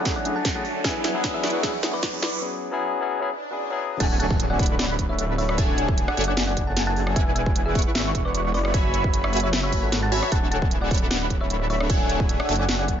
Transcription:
Already playing: ambient pad F#3 D4 E4 C#5 G#5, supersaw synth D4 A4 C#5 E5 F#5 G#5, synth pluck D5 F#5, riser
0.04 tine electric piano F#3 A3 C#4 E4 G#4, kick, snare, closed hi-hat
0.16 synth pluck D5 F#5
0.24 tine electric piano F#3 A3 C#4 E4 G#4, closed hi-hat
0.36 synth pluck F#5 A5
0.45 kick, snare, closed hi-hat
0.54 tine electric piano F#3 A3 C#4 E4 G#4, synth pluck F#5 A5
0.65 open hi-hat
0.83 tine electric piano F#3 B3 D4 E4 G#4, ambient pad F#3 G#4 D5, supersaw synth E4 B4 D5 F#5 G#5, synth pluck E5 G#5, kick, snare, closed hi-hat
1.04 synth pluck E5 G#5, snare, closed hi-hat
1.13 tine electric piano F#3 B3 D4 E4 G#4
1.24 kick, snare, closed hi-hat
1.34 synth pluck G#4 E5
1.43 tine electric piano F#3 B3 D4 E4 G#4, supersaw synth E4 B4 D5 F#5 C#6, snare, closed hi-hat
1.47 closed hi-hat
1.50 closed hi-hat
1.62 tine electric piano F#3 B3 D4 E4 G#4, synth pluck G#4 E5, kick, snare, closed hi-hat
1.82 tine electric piano F#3 B3 D4 E4 G#4, snare, closed hi-hat
1.93 synth pluck B4 D5
2.03 kick, snare, closed hi-hat
2.12 tine electric piano F#3 B3 D4 E4 G#4
2.22 synth pluck B4 D5, snare, open hi-hat
2.41 tine electric piano F#3 B3 C#4 E4 G#4
2.71 tine electric piano F#3 B3 C#4 E4 G#4
3.00 tine electric piano F#3 B3 C#4 E4 G#4
3.20 tine electric piano F#3 B3 C#4 E4 G#4, swell
3.51 tine electric piano F#3 B3 C#4 E4 G#4
3.70 tine electric piano F#3 B3 C#4 E4 G#4
4.00 detuned saw bass D1, supersaw synth D4 A4 C#5 E5 F#5 G#5, synth pluck F#5 A5, digital synth lead G#5, kick, closed hi-hat, crash, impact
4.20 synth pluck F#5 A5, closed hi-hat
4.31 kick
4.40 closed hi-hat
4.50 synth pluck D5 F#5
4.59 supersaw synth D4 A4 C#5 E5 F#5 B5, digital synth lead B5, kick, closed hi-hat
4.63 closed hi-hat
4.66 closed hi-hat
4.79 synth pluck D5 F#5, snare, closed hi-hat
4.99 detuned saw bass D1, kick, closed hi-hat
5.09 synth pluck C#5 E5
5.19 closed hi-hat
5.38 synth pluck C#5 E5, open hi-hat
5.49 cross-stick
5.58 supersaw synth D4 A4 C#5 E5 F#5 G#5, digital synth lead G#5, kick, closed hi-hat
5.78 closed hi-hat
5.88 kick
5.98 closed hi-hat
6.08 synth pluck D5 F#5, cross-stick
6.17 detuned saw bass F#1, supersaw synth D4 A4 C#5 E5 F#5 G#5, digital synth lead G#5, closed hi-hat
6.21 closed hi-hat
6.24 synth pluck D5 F#5, closed hi-hat
6.37 snare, closed hi-hat
6.47 synth pluck D5 F#5
6.57 kick, closed hi-hat
6.67 synth pluck F#5 A5
6.77 snare, closed hi-hat
6.87 synth pluck F#5 A5
6.96 open hi-hat
7.07 cross-stick
7.16 detuned saw bass E1, supersaw synth E4 B4 D5 F#5 G#5, synth pluck E5 G#5, digital synth lead G#5, kick, closed hi-hat
7.35 synth pluck E5 G#5, closed hi-hat
7.46 kick
7.56 closed hi-hat
7.66 synth pluck G#4 E5
7.75 supersaw synth E4 B4 D5 F#5 C#6, digital synth lead C#6, kick, closed hi-hat
7.79 closed hi-hat
7.82 closed hi-hat
7.95 detuned saw bass G#1, synth pluck G#4 E5, snare, closed hi-hat
8.15 detuned saw bass E1, kick, closed hi-hat
8.25 synth pluck B4 D5
8.35 closed hi-hat
8.54 detuned saw bass F#1, synth pluck B4 D5, open hi-hat
8.65 cross-stick
8.74 supersaw synth F#4 C#5 E5 G#5 B5, digital synth lead B5, kick, closed hi-hat
8.94 closed hi-hat
9.04 kick
9.14 closed hi-hat
9.24 synth pluck C#5 E5, cross-stick
9.33 supersaw synth F#4 C#5 E5 G#5 B5, digital synth lead B5, closed hi-hat
9.37 closed hi-hat
9.40 synth pluck C#5 E5, closed hi-hat
9.53 snare, closed hi-hat
9.63 synth pluck C#5 E5
9.72 supersaw synth F#4 C#5 E5 G#5 B5, digital synth lead B5, kick, closed hi-hat
9.83 detuned saw bass G#1, synth pluck A4 F#5
9.92 snare, closed hi-hat
10.03 synth pluck F#5 A5
10.12 supersaw synth F#4 C#5 E5 G#5 B5, digital synth lead B5, open hi-hat
10.23 cross-stick
10.32 detuned saw bass D1, supersaw synth D4 A4 C#5 E5 F#5 G#5, synth pluck F#5 A5, digital synth lead G#5, kick, closed hi-hat
10.51 synth pluck F#5 A5, closed hi-hat
10.62 kick
10.71 closed hi-hat
10.82 synth pluck D5 F#5
10.91 supersaw synth D4 A4 C#5 E5 F#5 B5, digital synth lead B5, kick, closed hi-hat
10.94 closed hi-hat
10.98 closed hi-hat
11.10 synth pluck D5 F#5, snare, closed hi-hat
11.30 detuned saw bass D1, kick, closed hi-hat
11.41 synth pluck C#5 E5
11.50 closed hi-hat
11.70 synth pluck C#5 E5, open hi-hat
11.80 cross-stick
11.90 supersaw synth D4 A4 C#5 E5 F#5 G#5, digital synth lead G#5, kick, closed hi-hat
12.09 closed hi-hat
12.20 kick
12.29 closed hi-hat
12.40 synth pluck D5 F#5, cross-stick
12.49 detuned saw bass F#1, supersaw synth D4 A4 C#5 E5 F#5 G#5, digital synth lead G#5, closed hi-hat
12.52 closed hi-hat
12.56 synth pluck D5 F#5, closed hi-hat
12.69 snare, closed hi-hat
12.79 synth pluck D5 F#5
12.88 kick, closed hi-hat

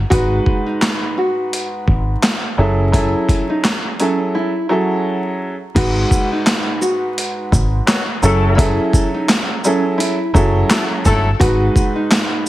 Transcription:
0.10 fingered electric bass G#1, grand piano G#2 G#3 D#4 F#4 B4, nylon-string guitar F#4, kick, closed hi-hat
0.46 kick
0.66 nylon-string guitar D#4
0.82 snare, clap, closed hi-hat
1.18 nylon-string guitar F#4
1.53 closed hi-hat
1.88 fingered electric bass G#1, kick
2.23 snare, clap, closed hi-hat
2.58 fingered electric bass F#1, grand piano F#3 C#4 E4 G#4 A4
2.92 grand piano F#3 C#4 E4 G#4 A4, nylon-string guitar E4, kick, closed hi-hat
3.29 kick, closed hi-hat
3.50 nylon-string guitar D#4
3.64 snare, clap, closed hi-hat
4.00 grand piano F#3 C#4 E4 G#4 A4, nylon-string guitar C#4, closed hi-hat
4.35 nylon-string guitar E4
4.69 grand piano F#3 C#4 E4 G#4 A4, nylon-string guitar F#4
5.75 fingered electric bass G#1, grand piano G#2 G#3 D#4 F#4 B4, nylon-string guitar F#4, kick, closed hi-hat, crash
6.11 kick, shaker
6.32 nylon-string guitar D#4
6.47 snare, clap, closed hi-hat
6.81 nylon-string guitar F#4, shaker
7.18 closed hi-hat
7.52 fingered electric bass G#1, kick, shaker
7.87 horn section D#3 F#3 B3 F#4, snare, clap, closed hi-hat
8.22 fingered electric bass F#1, grand piano F#3 C#4 E4 G#4 A4, horn section F#3 A3 E4 A4, shaker
8.55 grand piano F#3 C#4 E4 G#4 A4, nylon-string guitar E4, kick, closed hi-hat
8.93 kick, shaker
9.14 nylon-string guitar D#4
9.29 snare, clap, closed hi-hat
9.64 grand piano F#3 C#4 E4 G#4 A4, nylon-string guitar C#4, shaker
9.98 nylon-string guitar E4, closed hi-hat
10.34 fingered electric bass F#1, grand piano F#3 C#4 E4 G#4 A4, nylon-string guitar F#4, kick, shaker
10.70 horn section F#3 A3 E4 A4, snare, clap, closed hi-hat
11.05 fingered electric bass G1, horn section F#3 A3 E4 A4, kick, snare, shaker
11.39 fingered electric bass G#1, grand piano G#2 G#3 D#4 F#4 B4, nylon-string guitar F#4, kick, closed hi-hat
11.76 kick, shaker
11.96 nylon-string guitar D#4
12.11 snare, clap, closed hi-hat

